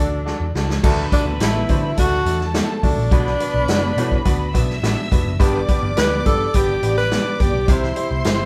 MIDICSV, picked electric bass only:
0, 0, Header, 1, 2, 480
1, 0, Start_track
1, 0, Tempo, 570885
1, 700, Time_signature, 4, 2, 24, 8
1, 7108, End_track
2, 0, Start_track
2, 0, Title_t, "Picked electric bass"
2, 0, Program_c, 0, 34
2, 0, Note_on_c, 0, 38, 93
2, 269, Note_off_c, 0, 38, 0
2, 337, Note_on_c, 0, 40, 76
2, 434, Note_off_c, 0, 40, 0
2, 456, Note_on_c, 0, 37, 80
2, 650, Note_off_c, 0, 37, 0
2, 701, Note_on_c, 0, 38, 95
2, 893, Note_off_c, 0, 38, 0
2, 1056, Note_on_c, 0, 38, 106
2, 1154, Note_off_c, 0, 38, 0
2, 1174, Note_on_c, 0, 33, 104
2, 1369, Note_off_c, 0, 33, 0
2, 1424, Note_on_c, 0, 50, 103
2, 1615, Note_off_c, 0, 50, 0
2, 1663, Note_on_c, 0, 38, 103
2, 1854, Note_off_c, 0, 38, 0
2, 1896, Note_on_c, 0, 40, 98
2, 2186, Note_off_c, 0, 40, 0
2, 2383, Note_on_c, 0, 38, 83
2, 2478, Note_off_c, 0, 38, 0
2, 2492, Note_on_c, 0, 34, 84
2, 2592, Note_off_c, 0, 34, 0
2, 2616, Note_on_c, 0, 35, 97
2, 2810, Note_off_c, 0, 35, 0
2, 2978, Note_on_c, 0, 35, 94
2, 3075, Note_off_c, 0, 35, 0
2, 3095, Note_on_c, 0, 30, 100
2, 3289, Note_off_c, 0, 30, 0
2, 3333, Note_on_c, 0, 47, 101
2, 3528, Note_off_c, 0, 47, 0
2, 3578, Note_on_c, 0, 38, 95
2, 3823, Note_on_c, 0, 35, 103
2, 3836, Note_off_c, 0, 38, 0
2, 4014, Note_off_c, 0, 35, 0
2, 4056, Note_on_c, 0, 33, 95
2, 4153, Note_off_c, 0, 33, 0
2, 4304, Note_on_c, 0, 29, 76
2, 4398, Note_off_c, 0, 29, 0
2, 4422, Note_on_c, 0, 30, 92
2, 4517, Note_off_c, 0, 30, 0
2, 4541, Note_on_c, 0, 31, 103
2, 4733, Note_off_c, 0, 31, 0
2, 4901, Note_on_c, 0, 31, 112
2, 4996, Note_off_c, 0, 31, 0
2, 5023, Note_on_c, 0, 38, 107
2, 5213, Note_off_c, 0, 38, 0
2, 5265, Note_on_c, 0, 43, 107
2, 5454, Note_off_c, 0, 43, 0
2, 5503, Note_on_c, 0, 31, 109
2, 5693, Note_off_c, 0, 31, 0
2, 5736, Note_on_c, 0, 33, 91
2, 6025, Note_off_c, 0, 33, 0
2, 6220, Note_on_c, 0, 31, 95
2, 6315, Note_off_c, 0, 31, 0
2, 6335, Note_on_c, 0, 35, 85
2, 6432, Note_off_c, 0, 35, 0
2, 6459, Note_on_c, 0, 36, 107
2, 6651, Note_off_c, 0, 36, 0
2, 6819, Note_on_c, 0, 36, 102
2, 6914, Note_off_c, 0, 36, 0
2, 6939, Note_on_c, 0, 31, 101
2, 7108, Note_off_c, 0, 31, 0
2, 7108, End_track
0, 0, End_of_file